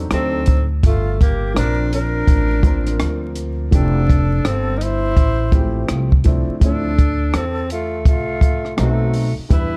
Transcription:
0.10 upright bass D2, upright piano F#3 C4 D4 D#4 A4, tenor saxophone C4, flute A4, cross-stick, closed hi-hat
0.46 kick, closed hi-hat
0.83 upright bass G1, tenor saxophone A3, flute F4, kick, closed hi-hat
1.20 tenor saxophone A#3, flute G4, kick, closed hi-hat
1.54 upright bass A#1, upright piano F3 A#3 C4 D4 A#4, tenor saxophone D4, flute A#4, cross-stick, closed hi-hat
1.92 tenor saxophone D4, flute A#4, closed hi-hat
2.28 upright bass A1, kick, closed hi-hat
2.63 upright piano F3 A#3 C4 D4 A#4, kick, closed hi-hat
2.87 cross-stick, closed hi-hat
3.00 upright bass D2, cross-stick, closed hi-hat
3.36 closed hi-hat
3.71 upright bass F1, upright piano F3 A3 C4 E4 G4, tenor saxophone D4, flute A4, kick, closed hi-hat
4.10 kick, closed hi-hat
4.45 upright bass G1, tenor saxophone C4, flute A4, cross-stick, closed hi-hat
4.77 tenor saxophone D#4, flute A#4
4.81 tenor saxophone E4, flute C5, closed hi-hat
5.17 upright bass A1, kick, closed hi-hat
5.52 upright piano F3 G#3 C4 E4 G4, kick, closed hi-hat
5.59 upright piano A3
5.89 upright bass C2, cross-stick, closed hi-hat
6.12 kick
6.24 upright piano F3 A3 C4 D4 E4, kick, closed hi-hat
6.49 muted upright bass stroke
6.60 upright bass D2, upright piano F3 A3 C4 D4 E4, flute A4, kick, closed hi-hat
6.64 tenor saxophone D4
6.99 kick, closed hi-hat
7.34 upright bass E2, tenor saxophone C4, flute A4, cross-stick, closed hi-hat
7.70 tenor saxophone A3, flute F4, closed hi-hat
8.05 upright bass C2, tenor saxophone A3, flute F4, kick, closed hi-hat
8.41 kick, closed hi-hat
8.65 cross-stick
8.77 upright bass B1, upright piano F#3 A3 B3 C4 D#4, flute F#4, cross-stick, closed hi-hat
8.81 tenor saxophone A3
9.13 open hi-hat
9.38 muted upright bass stroke
9.49 upright bass E2, upright piano E3 G3 B3 D4 E4, flute B4, kick, closed hi-hat
9.53 tenor saxophone E4

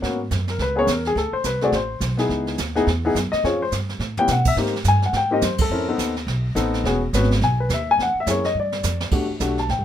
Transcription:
0.02 upright bass G#2, upright piano A#3 B3 C#4 F#4, brush sweep, kick, snare
0.31 upright bass F#2, kick, snare, hi-hat pedal
0.48 upright piano A#4, snare
0.59 upright bass C#2, upright piano B4, brush sweep, kick, snare
0.75 upright piano A#3 B3 C#4 G#4 C#5
0.87 upright bass E2, upright piano A#4, kick, snare, hi-hat pedal
1.05 upright piano G#4, snare
1.15 upright bass D2, upright piano A4, brush sweep, kick, snare
1.32 upright piano C5, muted upright bass stroke
1.44 upright bass C2, upright piano B4, kick, snare, hi-hat pedal
1.61 upright piano A3 C4 F#4 G#4 D5, snare
1.72 upright bass A1, upright piano C5, brush sweep, kick, snare
2.00 upright bass B1, kick, snare, hi-hat pedal
2.17 upright piano B3 D#4 E4 G#4, snare
2.29 upright bass C#2, brush sweep, kick, snare
2.47 snare
2.58 upright bass D#2, kick, snare, hi-hat pedal
2.75 upright piano B3 D#4 E4 G#4, snare
2.87 upright bass E2, brush sweep, kick, snare
3.05 upright piano B3 D#4 E4 G#4
3.15 upright bass F#2, kick, snare, hi-hat pedal
3.32 upright piano D#5, muted upright bass stroke, snare
3.44 upright bass F2, upright piano C4 C#4 F4 G#4 C#5, brush sweep, kick, snare
3.62 upright piano C5
3.72 upright bass G2, kick, snare, hi-hat pedal
3.89 snare
3.99 upright bass A2, snare
4.17 upright piano B3 C#4 E4 G4 G5, floor tom
4.28 upright bass B2, snare, hi-hat pedal
4.32 upright piano F#5
4.45 upright piano E5, kick, crash
4.56 upright bass G#2, upright piano A#3 C4 D#4 G4, brush sweep, kick, snare
4.66 snare
4.76 snare
4.84 upright bass G2, upright piano G#5, kick, snare, hi-hat pedal
5.02 upright piano F#5, snare
5.13 upright bass G#2, upright piano G5, brush sweep, kick, snare
5.31 upright piano A#3 C4 D#4 G4 D#5
5.42 upright bass F#2, upright piano C5, kick, snare, hi-hat pedal
5.58 upright piano A4, kick, ride
5.70 upright bass F2, upright piano C4 C#4 E4 A#4, brush sweep
5.88 upright piano B3 C4 D#4 A4
5.98 upright bass D#2, kick, snare, hi-hat pedal
6.16 snare
6.27 upright bass B1, brush sweep, kick, snare
6.55 upright bass A1, upright piano B3 C4 D#4 A4, kick, snare, hi-hat pedal
6.74 snare
6.84 upright bass E1, upright piano B3 C#4 F#4 G#4, brush sweep, kick, snare
7.13 upright bass G#1, upright piano B3 C#4 F#4 B4, kick, snare, hi-hat pedal
7.23 snare
7.31 snare
7.33 snare
7.41 upright bass B1, upright piano G#5, brush sweep, kick, snare
7.60 upright piano B4
7.69 upright bass D#2, kick, snare, hi-hat pedal
7.73 upright piano E5
7.91 upright piano G#5
7.97 upright bass E2, brush sweep, kick, snare
8.02 upright piano F#5
8.14 muted upright bass stroke
8.20 upright piano E5
8.26 upright bass F#2, upright piano A#3 C#4 E4 G#4 C#5, kick, snare, hi-hat pedal
8.44 upright piano D#5, snare
8.55 upright bass G2
8.60 upright piano D5
8.72 snare
8.83 upright bass F2, snare, hi-hat pedal
9.01 snare
9.11 upright bass E2, upright piano A3 D4 F#4 G4, brush sweep, kick, snare, ride
9.29 muted upright bass stroke
9.40 upright bass B1, upright piano A3 D4 F#4 G4, kick, snare, hi-hat pedal
9.58 upright piano A5, snare
9.69 upright bass A1, upright piano G5, brush sweep, kick, snare
9.78 upright bass G1

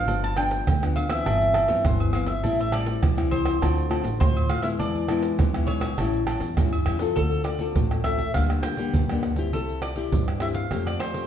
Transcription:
Already playing: nylon-string guitar F3 B3 D4, mandolin F5
0.08 upright bass G1, nylon-string guitar G2, pandeiro, low agogo, shaker, surdo
0.24 mandolin A5, pandeiro, shaker
0.36 nylon-string guitar F3 B3 D4, mandolin G5, pandeiro, tamborim, low agogo
0.51 pandeiro, shaker
0.67 upright bass D2, nylon-string guitar D3, pandeiro, tamborim, shaker, surdo
0.82 nylon-string guitar F3 B3 D4, pandeiro, tamborim, shaker
0.96 mandolin F5, pandeiro, high agogo
1.09 nylon-string guitar E3 B3 C4, mandolin E5, pandeiro, tamborim, high agogo, shaker
1.26 upright bass G1, nylon-string guitar G2, pandeiro, tamborim, low agogo, shaker, surdo
1.41 pandeiro, shaker
1.54 pandeiro, tamborim, low agogo, shaker
1.68 upright bass G2, nylon-string guitar E3 B3 C4, pandeiro, shaker
1.85 upright bass G1, nylon-string guitar G2, mandolin C5, pandeiro, tamborim, shaker, surdo
2.00 pandeiro, high agogo, shaker
2.13 nylon-string guitar E3 B3 C4, mandolin F5, pandeiro, tamborim, high agogo
2.27 mandolin E5, pandeiro, shaker
2.43 upright bass A1, nylon-string guitar A2 G3 C4 E4, pandeiro, low agogo, shaker, surdo
2.59 mandolin E5, pandeiro, shaker
2.72 nylon-string guitar G3 C4 E4, mandolin D5, pandeiro, tamborim, low agogo
2.86 pandeiro, shaker
3.02 upright bass C2, nylon-string guitar E3, pandeiro, tamborim, shaker, surdo
3.17 nylon-string guitar G3 C4 E4, pandeiro, tamborim, shaker
3.31 mandolin C5, pandeiro, high agogo, surdo
3.46 pandeiro, tamborim, high agogo, shaker
3.61 upright bass D2, nylon-string guitar D3 A3 C4 F4, pandeiro, tamborim, low agogo, shaker, surdo
3.78 pandeiro, shaker
3.89 nylon-string guitar A3 C4 F4, pandeiro, tamborim, low agogo, shaker
4.04 upright bass A1, pandeiro, shaker
4.20 upright bass D2, nylon-string guitar A2 A3 C4 F4, mandolin C5, pandeiro, tamborim, shaker, surdo
4.37 pandeiro, high agogo, shaker
4.49 nylon-string guitar A3 C4 F4, mandolin F5, pandeiro, tamborim, high agogo
4.62 nylon-string guitar G#3 B3 E4, mandolin E5, pandeiro, shaker
4.79 upright bass E2, nylon-string guitar E3, mandolin D5, pandeiro, low agogo, shaker, surdo
4.95 pandeiro, shaker
5.08 nylon-string guitar G#3 B3 E4, pandeiro, tamborim, low agogo
5.23 pandeiro, shaker
5.38 upright bass B1, nylon-string guitar B2, pandeiro, tamborim, shaker, surdo
5.54 nylon-string guitar G#3 B3 E4, pandeiro, tamborim, shaker
5.67 mandolin C#5, pandeiro, high agogo, surdo
5.81 pandeiro, tamborim, high agogo, shaker
5.98 upright bass A1, nylon-string guitar A2 G3 C#4 E4, pandeiro, tamborim, low agogo, shaker, surdo
6.13 pandeiro, shaker
6.27 nylon-string guitar G3 C#4 E4, pandeiro, tamborim, low agogo, shaker
6.40 upright bass E2, pandeiro, shaker
6.57 upright bass G2, nylon-string guitar E3 G3 C#4 E4, pandeiro, tamborim, shaker, surdo
6.73 pandeiro, high agogo, shaker
6.86 upright bass E2, nylon-string guitar G3 C#4 E4, pandeiro, tamborim, high agogo
6.99 nylon-string guitar C4 F4 A4, pandeiro, shaker
7.16 upright bass D2, nylon-string guitar D3, mandolin A4, pandeiro, shaker, surdo
7.31 pandeiro, shaker
7.44 mandolin D5, pandeiro, tamborim, shaker
7.59 nylon-string guitar C4 F4 A4, pandeiro, shaker
7.75 upright bass A1, nylon-string guitar A2, pandeiro, shaker, surdo
7.91 pandeiro, tamborim, shaker
8.04 nylon-string guitar C4 F4 A4, mandolin E5, pandeiro, tamborim, shaker, surdo
8.18 pandeiro, shaker
8.34 upright bass D2, nylon-string guitar G2 D3 G3 A#3 D4 G4, mandolin F5, pandeiro, tamborim, shaker, surdo
8.50 pandeiro, tamborim, shaker
8.63 mandolin G5, pandeiro, tamborim, shaker
8.77 nylon-string guitar D3 G3 A#3 D4 G4, pandeiro, shaker
8.94 upright bass D2, nylon-string guitar G2, pandeiro, shaker, surdo
9.09 nylon-string guitar D3 G3 A#3 D4 G4, pandeiro, tamborim, shaker
9.23 pandeiro, tamborim
9.36 nylon-string guitar C4 E4 G4, pandeiro, shaker
9.52 upright bass C2, nylon-string guitar C3, mandolin A4, pandeiro, shaker, surdo
9.69 pandeiro, shaker
9.82 mandolin D5, pandeiro, tamborim, shaker
9.96 nylon-string guitar C4 E4 G4, pandeiro, shaker
10.12 upright bass G2, nylon-string guitar G2, pandeiro, shaker, surdo
10.28 pandeiro, tamborim, shaker
10.40 nylon-string guitar C4 E4 G4, mandolin E5, pandeiro, tamborim, shaker
10.54 mandolin F5, pandeiro, shaker
10.71 upright bass F2, nylon-string guitar F3 A3 C4 G4, pandeiro, tamborim, shaker, surdo
10.87 mandolin D5, pandeiro, tamborim, shaker
11.00 mandolin C5, pandeiro, tamborim, shaker
11.14 nylon-string guitar A3 C4 G4, pandeiro, shaker

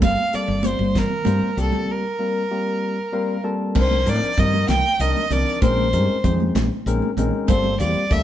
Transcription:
Already playing: tine electric piano G3 A#3 C4 F4 A4
0.02 fretless electric bass G1, violin F5, kick, closed hi-hat, muted conga
0.33 tine electric piano G3 A#3 C4 F4 A4, violin D5, muted fretless electric bass stroke, closed hi-hat
0.48 fretless electric bass G1, low conga
0.63 tine electric piano G3 A#3 C4 F4 C5, violin C5, closed hi-hat, muted conga
0.79 fretless electric bass G1, high conga
0.95 violin A#4, kick, snare, closed hi-hat, low conga
1.10 low conga
1.25 fretless electric bass G2, tine electric piano G3 A#3 C4 F4 C5, closed hi-hat, muted conga, low conga
1.42 muted fretless electric bass stroke
1.57 fretless electric bass C2, tine electric piano G3 A#3 C4 F4 G4, violin A4, closed hi-hat, low conga
1.72 high conga, low conga
1.92 violin A#4
2.19 tine electric piano G3 A#3 C4 F4 A#4
2.51 tine electric piano G3 A#3 C4 F4 G4
3.12 tine electric piano G3 A#3 C4 F4 A#4 F5
3.44 tine electric piano G3 A#3 C4 F4 A4 A5
3.75 fretless electric bass C2, tine electric piano F3 C4 D4 D#4 A#4, violin C5, kick, crash, muted conga
3.91 high conga
4.06 fretless electric bass A2, tine electric piano F3 C4 D4 D#4 A#4, violin D5, closed hi-hat
4.22 muted fretless electric bass stroke
4.37 fretless electric bass G2, tine electric piano F3 C4 D#4 F4 A#4, violin D#5, kick, closed hi-hat, low conga
4.54 high conga
4.68 fretless electric bass C2, violin G5, snare, closed hi-hat, muted conga, low conga
4.99 fretless electric bass C2, tine electric piano F3 C4 D4 D#4 A#4, violin D#5, closed hi-hat
5.17 high conga
5.30 fretless electric bass C2, tine electric piano F3 C4 D4 D#4 A#4, violin D5, closed hi-hat, low conga
5.62 fretless electric bass A#1, tine electric piano G#3 C4 C#4 D#4 A#4, violin C5, kick, closed hi-hat, muted conga
5.78 high conga
5.93 fretless electric bass G2, tine electric piano G#3 C4 C#4 D#4 A#4, closed hi-hat, low conga
6.09 muted fretless electric bass stroke
6.24 fretless electric bass F2, tine electric piano G#3 C4 C#4 D#4 C5, kick, closed hi-hat, low conga
6.40 high conga
6.55 fretless electric bass A#1, snare, closed hi-hat, muted conga, low conga
6.86 fretless electric bass A#1, tine electric piano G#3 C4 C#4 D#4 A#4, closed hi-hat
7.02 high conga
7.17 fretless electric bass A#1, tine electric piano G#3 C4 C#4 D#4 A#4, closed hi-hat, low conga
7.48 fretless electric bass G1, tine electric piano G3 A#3 C4 F4 A4, violin C5, kick, closed hi-hat, muted conga
7.64 high conga
7.80 fretless electric bass E2, tine electric piano G3 A#3 C4 F4 G4, violin D5, closed hi-hat, low conga
7.95 muted fretless electric bass stroke
8.10 fretless electric bass D2, tine electric piano G3 A#3 C4 F4 A4, violin E5, kick, closed hi-hat

